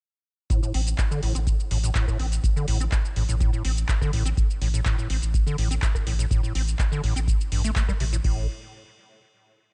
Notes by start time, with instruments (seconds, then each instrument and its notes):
0.50 acid bass A2, kick, closed hi-hat, shaker
0.63 acid bass A2, shaker
0.74 analog synth bass A1, acid bass C4, open hi-hat
0.87 closed hi-hat, shaker
0.98 kick, clap, closed hi-hat, shaker
1.11 acid bass D3, shaker
1.23 analog synth bass A1, acid bass A2, open hi-hat
1.35 analog synth bass A1, acid bass C4, closed hi-hat, shaker
1.47 kick, closed hi-hat, shaker
1.60 shaker
1.71 analog synth bass A1, acid bass A2, open hi-hat
1.84 acid bass A2, closed hi-hat, shaker
1.95 acid bass A2, kick, clap, closed hi-hat, shaker
2.08 acid bass A2, kick, cross-stick, shaker
2.19 analog synth bass A1, acid bass C4, open hi-hat
2.32 closed hi-hat, shaker
2.44 kick, closed hi-hat, shaker
2.56 acid bass D3, shaker
2.68 analog synth bass A1, acid bass A2, open hi-hat
2.80 acid bass C4, closed hi-hat, shaker
2.92 kick, clap, closed hi-hat, shaker
3.05 shaker
3.16 analog synth bass A1, acid bass A2, open hi-hat
3.29 analog synth bass A1, acid bass A2, closed hi-hat, shaker
3.40 acid bass A2, kick, closed hi-hat, shaker
3.53 acid bass A2, shaker
3.65 analog synth bass A1, acid bass C4, open hi-hat
3.77 closed hi-hat, shaker
3.89 kick, clap, closed hi-hat, shaker
4.01 acid bass D3, kick, cross-stick, shaker
4.13 analog synth bass A1, acid bass A2, open hi-hat
4.26 acid bass C4, closed hi-hat, shaker
4.37 kick, closed hi-hat, shaker
4.50 shaker
4.61 analog synth bass A1, acid bass A2, open hi-hat
4.74 acid bass A2, closed hi-hat, shaker
4.85 acid bass A2, kick, clap, closed hi-hat, shaker
4.98 acid bass A2, shaker
5.10 analog synth bass A1, acid bass C4, open hi-hat
5.22 analog synth bass A1, closed hi-hat, shaker
5.34 kick, closed hi-hat, shaker
5.47 acid bass D3, shaker
5.58 analog synth bass A1, acid bass A2, open hi-hat
5.71 acid bass C4, closed hi-hat, shaker
5.82 kick, clap, closed hi-hat, shaker
5.95 kick, cross-stick, shaker
6.07 analog synth bass A1, acid bass A2, open hi-hat
6.19 acid bass A2, closed hi-hat, shaker
6.31 acid bass A2, kick, closed hi-hat, shaker
6.43 acid bass A2, shaker
6.55 analog synth bass A1, acid bass C4, open hi-hat
6.68 closed hi-hat, shaker
6.79 kick, clap, closed hi-hat, shaker
6.92 acid bass D3, shaker
7.03 analog synth bass A1, acid bass A2, open hi-hat
7.16 analog synth bass A1, acid bass C4, closed hi-hat, shaker
7.28 kick, closed hi-hat, shaker
7.41 shaker
7.52 analog synth bass A1, acid bass G2, open hi-hat
7.64 acid bass A3, closed hi-hat, shaker
7.76 acid bass A3, kick, clap, closed hi-hat, shaker
7.88 acid bass G3, kick, cross-stick, shaker
8.00 analog synth bass A1, acid bass C3, open hi-hat
8.13 acid bass A2, closed hi-hat, shaker
8.24 analog synth bass A1, acid bass A2, kick, crash